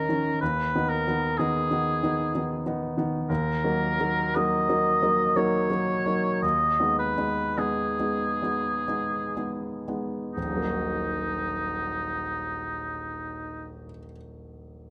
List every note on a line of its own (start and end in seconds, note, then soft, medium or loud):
0.00 0.09 D#3 soft
0.00 0.09 C#4 soft
0.00 0.10 D#4 soft
0.00 0.41 A#4 soft
0.09 0.38 D#3 soft
0.09 0.38 C#4 soft
0.09 0.38 D#4 soft
0.41 0.73 D#2 soft
0.41 0.91 B4 medium
0.75 1.03 D#3 soft
0.75 1.03 B3 soft
0.75 1.04 D#4 soft
0.90 1.39 A#4 medium
1.08 1.35 D#3 soft
1.08 1.36 B3 soft
1.08 1.36 D#4 soft
1.38 1.67 D#3 soft
1.38 1.68 B3 soft
1.38 1.68 D#4 soft
1.38 2.81 G#4 medium
1.71 1.99 D#3 soft
1.71 1.99 B3 soft
1.71 2.00 D#4 soft
2.03 2.31 D#3 soft
2.03 2.31 B3 soft
2.03 2.31 D#4 soft
2.35 2.63 D#3 soft
2.35 2.63 B3 soft
2.35 2.63 D#4 soft
2.66 2.94 D#3 soft
2.66 2.94 B3 soft
2.66 2.94 D#4 soft
2.98 3.26 D#3 soft
2.98 3.26 B3 soft
2.98 3.27 D#4 soft
3.29 3.62 D#2 soft
3.29 4.37 A#4 medium
3.64 3.96 F#3 soft
3.64 3.96 A#3 soft
3.64 3.96 D#4 soft
4.00 4.31 F#3 soft
4.00 4.31 A#3 soft
4.00 4.32 D#4 soft
4.36 4.66 F#3 soft
4.36 4.66 A#3 soft
4.36 4.66 D#4 soft
4.36 5.38 D#5 medium
4.69 4.99 F#3 soft
4.69 4.99 A#3 soft
4.69 4.99 D#4 soft
5.02 5.32 F#3 soft
5.02 5.32 A#3 soft
5.02 5.33 D#4 soft
5.36 5.67 F#3 soft
5.36 5.67 A#3 soft
5.36 5.67 D#4 soft
5.36 6.42 C#5 medium
5.70 6.02 F#3 soft
5.70 6.03 A#3 soft
5.70 6.03 D#4 soft
6.06 6.39 F#3 soft
6.06 6.39 A#3 soft
6.06 6.39 D#4 soft
6.42 6.79 D#2 soft
6.42 6.98 D#5 medium
6.80 7.14 G#3 soft
6.80 7.15 B3 soft
6.80 7.15 D#4 soft
6.99 7.60 B4 medium
7.18 7.54 G#3 soft
7.18 7.54 B3 soft
7.18 7.54 D#4 soft
7.58 7.95 G#3 soft
7.58 7.96 B3 soft
7.58 7.96 D#4 soft
7.58 9.63 G#4 soft
8.00 8.39 G#3 soft
8.00 8.39 B3 soft
8.00 8.39 D#4 soft
8.42 8.84 G#3 soft
8.42 8.85 B3 soft
8.42 8.85 D#4 soft
8.88 9.33 G#3 soft
8.88 9.33 B3 soft
8.88 9.33 D#4 soft
9.37 9.84 G#3 soft
9.37 9.84 B3 soft
9.37 9.84 D#4 soft
9.88 10.32 G#3 soft
9.88 10.32 B3 soft
9.88 10.32 D#4 soft
10.33 13.83 D#1 soft
10.33 13.79 D#4 soft
10.44 13.90 A#1 soft
10.50 13.96 F#3 soft
10.57 14.03 A#3 soft
10.64 14.10 D#4 soft
10.70 14.17 F#4 soft